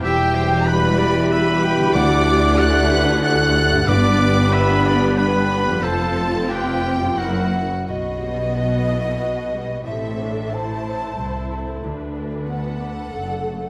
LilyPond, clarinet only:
\new Staff \with { instrumentName = "Clarinet" } { \time 3/4 \key g \major \tempo 4 = 92 e''8 c''8 b'8 d''8 e''8 g''8 | fis''4 d''8 b'8 a'4 | b'4 e''8 d''8 b'4 | c''8 a'8 b'8 r8 ais'8 r8 |
\key b \phrygian r2. | r2. | r2. | }